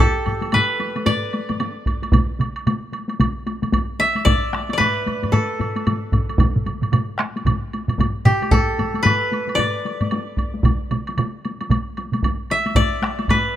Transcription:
Already playing: koto G4
0.00 koto A4, taiko low-mid, taiko high
0.26 taiko low-mid, taiko high, high woodblock
0.41 taiko high, high woodblock
0.52 koto B4, taiko low-mid, taiko high, high woodblock
0.80 taiko high, high woodblock
0.96 taiko high, high woodblock
1.06 koto D5, taiko low-mid, taiko high, high woodblock
1.33 taiko high, high woodblock
1.49 taiko low-mid, taiko high, high woodblock
1.60 taiko high, high woodblock
1.86 taiko, taiko high, high woodblock
2.03 taiko high, high woodblock
2.12 taiko, taiko mid, taiko high, high woodblock
2.40 taiko mid, taiko high, high woodblock
2.56 high woodblock
2.67 taiko mid, taiko high, high woodblock
2.93 taiko high, high woodblock
3.08 taiko high, high woodblock
3.20 taiko, taiko mid, taiko high, high woodblock
3.46 taiko high, high woodblock
3.62 taiko mid, taiko high, high woodblock
3.72 taiko, taiko high, high woodblock
4.00 koto E5, taiko high, high woodblock
4.15 taiko high, high woodblock
4.25 koto D5, taiko, taiko low-mid, taiko high, high woodblock
4.53 taiko rim, taiko high, high woodblock
4.70 koto D5, taiko high, high woodblock
4.78 koto B4, taiko low-mid, taiko high, high woodblock
5.06 taiko low-mid, taiko high, high woodblock
5.23 taiko low-mid, taiko high, high woodblock
5.32 koto A4, taiko low-mid, taiko high, high woodblock
5.60 taiko low-mid, taiko high, high woodblock
5.76 taiko high, high woodblock
5.87 taiko low-mid, taiko high, high woodblock
6.12 taiko, taiko low-mid, taiko high, high woodblock
6.29 taiko high, high woodblock
6.38 taiko, taiko low-mid, taiko mid, taiko high, high woodblock
6.56 taiko low-mid, taiko mid
6.66 taiko low-mid, taiko mid, taiko high, high woodblock
6.81 taiko low-mid, taiko mid, taiko high, high woodblock
6.92 taiko low-mid, taiko mid, taiko high, high woodblock
7.19 taiko rim, taiko high, high woodblock
7.36 taiko high, high woodblock
7.45 taiko, taiko low-mid, taiko mid, taiko high, high woodblock
7.73 taiko high, high woodblock
7.88 taiko low-mid, taiko mid, taiko high, high woodblock
7.98 taiko, taiko low-mid, taiko mid, taiko high, high woodblock
8.25 koto G4, taiko low-mid, taiko mid, taiko high, high woodblock
8.42 taiko high, high woodblock
8.51 koto A4, taiko, taiko low-mid, taiko high, high woodblock
8.79 taiko low-mid, taiko high, high woodblock
8.94 taiko high, high woodblock
9.03 koto B4, taiko low-mid, taiko high, high woodblock
9.32 taiko high, high woodblock
9.47 taiko high, high woodblock
9.55 koto D5, taiko low-mid, taiko high
9.59 high woodblock
9.85 taiko high, high woodblock
10.01 taiko low-mid, taiko high, high woodblock
10.11 taiko high, high woodblock
10.37 taiko, taiko high, high woodblock
10.54 taiko high
10.63 taiko, taiko mid, taiko high, high woodblock
10.91 taiko mid, taiko high, high woodblock
11.07 taiko high, high woodblock
11.17 taiko mid, taiko high, high woodblock
11.45 taiko high, high woodblock
11.61 taiko high, high woodblock
11.70 taiko, taiko mid, taiko high, high woodblock
11.97 taiko high, high woodblock
12.13 taiko mid, taiko high, high woodblock
12.23 taiko, taiko high, high woodblock
12.50 koto E5, taiko high, high woodblock
12.66 taiko high, high woodblock
12.75 koto D5, taiko, taiko low-mid, taiko high, high woodblock
13.03 taiko rim, taiko high, high woodblock
13.19 taiko high, high woodblock
13.28 koto B4, taiko, taiko low-mid, taiko high, high woodblock

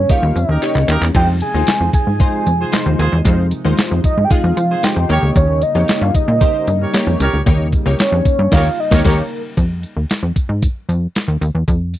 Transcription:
Already playing: analog synth pad C#3 G3 A#3 C#4, soft synth lead C#5
0.09 analog polysynth A#3 D#4 G4 C#5, soft synth lead F5, kick, closed hi-hat
0.23 analog synth bass D#2
0.36 analog synth bass F2, soft synth lead D#5, closed hi-hat
0.49 analog synth bass D#2, horn section D#4 G4 A#4
0.62 analog polysynth A#3 D#4 G4 C#5, clap, closed hi-hat
0.75 analog synth bass C#2, clap
0.88 analog synth bass D#2, horn section D#4 G4 A#4, clap, closed hi-hat
1.01 analog synth bass E2, clap, closed hi-hat
1.15 analog synth bass F2, analog synth pad C3 F3 G#3 D#4, analog polysynth G#3 D#4 F4 C5, soft synth lead G5, kick, crash
1.40 soft synth lead G#5, closed hi-hat
1.54 analog synth bass D#2, analog polysynth G#3 D#4 F4 C5
1.67 snare, clap, closed hi-hat
1.80 analog synth bass F2
1.93 soft synth lead G#5, kick, closed hi-hat
2.07 analog synth bass G#2
2.20 analog polysynth G#3 D#4 F4 C5, kick, closed hi-hat
2.46 analog synth bass F2, closed hi-hat
2.60 horn section F4 G#4 C5
2.72 analog polysynth G#3 D#4 F4 C5, snare, clap, closed hi-hat
2.86 analog synth bass D#2
2.99 analog synth bass D#2, horn section F4 G#4 C5, closed hi-hat
3.12 analog synth bass E2
3.25 analog synth bass F2, analog polysynth G#3 D#4 F4 C5, kick, closed hi-hat
3.51 closed hi-hat
3.65 analog synth bass D#2, analog polysynth G#3 D#4 F4 C5
3.77 snare, clap, closed hi-hat
3.91 analog synth bass F2
4.04 soft synth lead D#5, kick, closed hi-hat
4.17 analog synth bass G#2
4.25 soft synth lead G5
4.30 analog polysynth G#3 D#4 F4 G#4, soft synth lead F5, kick, closed hi-hat
4.44 analog synth bass F2
4.57 analog synth bass F3, closed hi-hat
4.70 horn section F4 G#4 C5
4.83 analog polysynth G#3 D#4 F4 C5, soft synth lead G5, snare, clap, closed hi-hat
4.96 analog synth bass F2
5.09 analog synth bass D#2, analog synth pad C#3 G3 A#3 D#4, analog polysynth A#3 D#4 G4 C#5, horn section G4 A#4 C#5, closed hi-hat
5.23 analog synth bass D2
5.36 analog synth bass D#2, soft synth lead C#5, kick, closed hi-hat
5.62 soft synth lead D#5, closed hi-hat
5.75 analog synth bass F2, analog polysynth A#3 D#4 G4 C#5
5.88 snare, clap, closed hi-hat
6.01 analog synth bass G2, soft synth lead F5
6.15 soft synth lead D#5, kick, closed hi-hat
6.28 analog synth bass A#2
6.41 analog polysynth A#3 D#4 G4 C5, kick, closed hi-hat
6.67 analog synth bass G2, closed hi-hat
6.81 horn section G4 A#4 C#5
6.93 analog polysynth A#3 D#4 G4 C#5, snare, clap, closed hi-hat
7.07 analog synth bass F2
7.20 analog synth bass C#2, horn section G4 A#4 C#5, closed hi-hat
7.34 analog synth bass D2
7.46 analog synth bass D#2, analog polysynth A#3 D#4 G4 C#5, kick, closed hi-hat
7.72 kick, closed hi-hat
7.86 analog synth bass C#2, analog polysynth A#3 D#4 G4 C#5
7.99 soft synth lead C#5, snare, clap, closed hi-hat
8.12 analog synth bass F2
8.25 kick, closed hi-hat
8.39 analog synth bass G2
8.52 analog synth bass D#2, analog polysynth A#3 D#4 G4 C#5, horn section G4 A#4 C#5, soft synth lead F5, kick, snare, crash
8.80 soft synth lead D#5
8.91 analog synth bass D#2, analog polysynth A#3 D#4 G4 C#5, horn section G4 A#4 C#5, kick, snare
9.04 analog synth bass D#2, analog polysynth A#3 D#4 G4 C#5, horn section G4 A#4 C#5, soft synth lead A#4, kick, snare, crash
9.57 analog synth bass F2, kick, closed hi-hat
9.83 closed hi-hat
9.96 analog synth bass D#2
10.10 snare, clap, closed hi-hat
10.23 analog synth bass F2
10.36 kick, closed hi-hat
10.49 analog synth bass G#2
10.62 kick, closed hi-hat
10.89 analog synth bass F2, closed hi-hat
11.15 snare, clap, closed hi-hat
11.28 analog synth bass D#2
11.41 analog synth bass D#2, closed hi-hat
11.55 analog synth bass E2
11.68 analog synth bass F2, kick, closed hi-hat
11.94 closed hi-hat

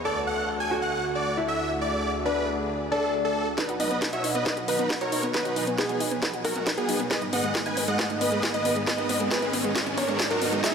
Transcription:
0.05 analog synth pad D2 D3 A3 F#4 A4, grand piano A4, supersaw synth D5
0.27 supersaw synth F#5
0.60 supersaw synth G#5
0.71 grand piano F#4
0.82 supersaw synth F#5
1.15 supersaw synth D5
1.37 grand piano E4
1.48 supersaw synth E5
1.81 analog synth pad G#4, supersaw synth D5
2.25 grand piano D4, supersaw synth B4
2.92 grand piano D4, supersaw synth A4
3.25 supersaw synth A4
3.58 analog synth pad B2 F#3 D#4 B4 F#5, supersaw synth D#4 B4, synth pluck B4, digital synth lead B4, kick, snare, closed hi-hat, riser
3.69 synth pluck F#4, closed hi-hat
3.80 synth pluck D#4, supersaw synth B4 D#5, digital synth lead D#5, open hi-hat, mid tom
3.91 synth pluck B3, closed hi-hat
4.02 synth pluck B4, kick, snare, closed hi-hat
4.13 synth pluck F#4, supersaw synth C#5 E5, digital synth lead E5, closed hi-hat
4.24 synth pluck D#4, open hi-hat
4.35 synth pluck B3, supersaw synth B4 D#5, digital synth lead D#5, closed hi-hat
4.46 synth pluck B4, kick, snare, closed hi-hat
4.57 synth pluck F#4, closed hi-hat
4.68 supersaw synth D#4 B4, synth pluck D#4, digital synth lead B4, open hi-hat
4.79 synth pluck B3, closed hi-hat
4.90 synth pluck B4, kick, snare, closed hi-hat
5.01 synth pluck F#4, supersaw synth A#4 C#5, digital synth lead C#5, closed hi-hat
5.12 synth pluck D#4, open hi-hat
5.23 synth pluck B3, closed hi-hat
5.34 supersaw synth D#4 B4, synth pluck B4, digital synth lead B4, analog synth pad G#5, kick, snare, closed hi-hat
5.45 synth pluck F#4, closed hi-hat
5.56 synth pluck D#4, open hi-hat
5.67 synth pluck B3, closed hi-hat
5.78 supersaw synth B3 G#4, digital synth lead G#4, synth pluck B4, kick, snare, closed hi-hat
5.89 synth pluck F#4, closed hi-hat
6.00 synth pluck D#4, open hi-hat
6.11 synth pluck B3, closed hi-hat
6.22 synth pluck B4, kick, snare, closed hi-hat
6.34 synth pluck F#4, closed hi-hat
6.45 synth pluck D#4, supersaw synth F#4 A#4, digital synth lead A#4, kick, open hi-hat
6.56 synth pluck B3, closed hi-hat, mid tom
6.67 synth pluck B4, kick, snare, closed hi-hat
6.78 supersaw synth B3 G#4, synth pluck F#4, digital synth lead G#4, closed hi-hat
6.89 synth pluck D#4, open hi-hat
7.00 synth pluck B3, closed hi-hat
7.11 analog synth pad G#2 D#3 B3 G#4 D#5, synth pluck G#4, supersaw synth B4 D#5, digital synth lead D#5, kick, snare, closed hi-hat
7.22 synth pluck D#4, closed hi-hat
7.33 synth pluck B3, supersaw synth D#5 F#5, digital synth lead F#5, open hi-hat, mid tom
7.44 synth pluck G#3, closed hi-hat
7.55 synth pluck G#4, kick, snare, closed hi-hat
7.66 synth pluck D#4, supersaw synth B4 G#5, digital synth lead G#5, closed hi-hat
7.77 synth pluck B3, open hi-hat
7.88 synth pluck G#3, supersaw synth D#5 F#5, digital synth lead F#5, closed hi-hat
7.99 synth pluck G#4, kick, snare, closed hi-hat
8.10 synth pluck D#4, closed hi-hat
8.21 synth pluck B3, supersaw synth B4 D#5, digital synth lead D#5, open hi-hat
8.32 synth pluck G#3, closed hi-hat
8.43 synth pluck G#4, kick, snare, closed hi-hat
8.54 synth pluck D#4, supersaw synth B4 D#5, digital synth lead D#5, closed hi-hat
8.65 synth pluck B3, open hi-hat
8.76 synth pluck G#3, closed hi-hat
8.87 synth pluck G#4, supersaw synth B4 D#5, digital synth lead D#5, kick, snare, closed hi-hat
8.98 synth pluck D#4, closed hi-hat
9.09 synth pluck B3, open hi-hat
9.20 synth pluck G#3, closed hi-hat
9.31 synth pluck G#4, supersaw synth G#4 B4, digital synth lead B4, kick, snare, closed hi-hat
9.42 synth pluck D#4, closed hi-hat
9.53 synth pluck B3, open hi-hat
9.64 synth pluck G#3, closed hi-hat
9.75 synth pluck G#4, kick, snare, closed hi-hat
9.87 synth pluck D#4, closed hi-hat
9.97 synth pluck B3, supersaw synth A#4 C#5, digital synth lead C#5, kick, open hi-hat
10.09 synth pluck G#3, closed hi-hat, mid tom
10.20 synth pluck G#4, kick, snare, closed hi-hat
10.31 synth pluck D#4, supersaw synth F#4 A#4, digital synth lead A#4, closed hi-hat
10.42 synth pluck B3, open hi-hat
10.53 synth pluck G#3, closed hi-hat
10.64 analog synth pad E2 E3 G#4 B4, synth pluck G#4, supersaw synth G#4 E5, digital synth lead E5, kick, snare, closed hi-hat, tambourine

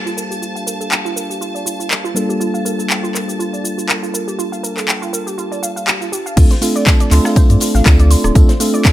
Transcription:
Already playing: tine electric piano G3 A#3 D4 F4 A4, ambient pad D4 G4 C5 F5, string machine A5
0.06 synth pluck F4, cabasa
0.17 synth pluck A#4, cabasa
0.31 synth pluck G4, cabasa
0.42 synth pluck F4, cabasa
0.56 synth pluck F5, cabasa
0.67 synth pluck A#4, cabasa
0.80 synth pluck A4, cabasa
0.92 synth pluck G5, clap, cabasa
1.05 synth pluck F4, cabasa
1.16 synth pluck A#4, cabasa
1.30 synth pluck G4, cabasa
1.41 synth pluck F4, cabasa
1.55 synth pluck D5, cabasa
1.66 synth pluck F4, cabasa
1.80 synth pluck F4, cabasa
1.91 synth pluck A#4, clap, cabasa
2.04 synth pluck F4, cabasa
2.15 tine electric piano G3 A#3 D4 F4 A4, synth pluck A#4, cabasa
2.29 synth pluck G4, cabasa
2.40 synth pluck F4, cabasa
2.54 synth pluck F5, cabasa
2.65 synth pluck A#4, cabasa
2.79 synth pluck A4, cabasa
2.90 synth pluck G5, clap, cabasa
3.04 synth pluck F4, cabasa
3.15 synth pluck A#4, clap, cabasa
3.28 synth pluck G4, cabasa
3.39 synth pluck F4, cabasa
3.53 synth pluck D5, cabasa
3.64 synth pluck F4, cabasa
3.78 synth pluck F4, cabasa
3.89 synth pluck A#4, clap, cabasa
4.03 synth pluck F4, cabasa
4.14 synth pluck A#4, cabasa
4.28 synth pluck G4, cabasa
4.39 synth pluck F4, cabasa
4.52 synth pluck F5, cabasa
4.64 synth pluck A#4, cabasa
4.77 synth pluck A4, clap, cabasa
4.88 synth pluck G5, clap, cabasa
5.02 synth pluck F4, cabasa
5.13 synth pluck A#4, cabasa
5.27 synth pluck G4, cabasa
5.38 synth pluck F4, cabasa
5.52 synth pluck D5, cabasa
5.63 synth pluck F5, cabasa
5.76 synth pluck F5, cabasa
5.87 synth pluck G4, clap, cabasa
6.01 synth pluck F4, cabasa
6.12 synth pluck G4, cabasa
6.26 synth pluck F5, cabasa
6.37 sub bass D2, tine electric piano A3 C4 D4 F4 A4, synth pluck F4, kick, closed hi-hat, crash, tambourine, cabasa
6.51 synth pluck C5, snare, closed hi-hat, cabasa
6.61 tine electric piano A3 C4 D4 F4 A4, synth pluck F4, open hi-hat, tambourine, cabasa
6.76 synth pluck D5, cabasa
6.87 synth pluck A5, kick, snare, clap, closed hi-hat, tambourine, cabasa
7.00 synth pluck D5, closed hi-hat, cabasa
7.10 sub bass D2, tine electric piano A3 C4 D4 F4 A4, synth pluck C6, snare, clap, open hi-hat, cabasa
7.25 synth pluck F5, cross-stick, snare, cabasa
7.36 synth pluck C5, kick, closed hi-hat, tambourine, cabasa
7.50 sub bass G2, synth pluck D5, closed hi-hat, cabasa
7.60 synth pluck F4, open hi-hat, tambourine, cabasa
7.75 sub bass A1, synth pluck F5, snare, cabasa
7.85 sub bass D2, tine electric piano A3 C4 D4 F4 A4, synth pluck D5, kick, cross-stick, snare, clap, closed hi-hat, tambourine, cabasa
8.00 synth pluck D5, closed hi-hat, cabasa
8.11 synth pluck C6, open hi-hat, tambourine, cabasa
8.24 sub bass D1, synth pluck D5, cross-stick, closed hi-hat, cabasa
8.35 sub bass D2, tine electric piano A3 C4 D4 F4 A4, synth pluck F4, kick, closed hi-hat, tambourine, cabasa
8.49 synth pluck C5, snare, closed hi-hat, cabasa
8.60 tine electric piano A3 C4 D4 F4 A4, synth pluck F4, open hi-hat, tambourine, cabasa
8.74 synth pluck D5, cabasa
8.85 synth pluck A5, kick, snare, clap, closed hi-hat, tambourine, cabasa

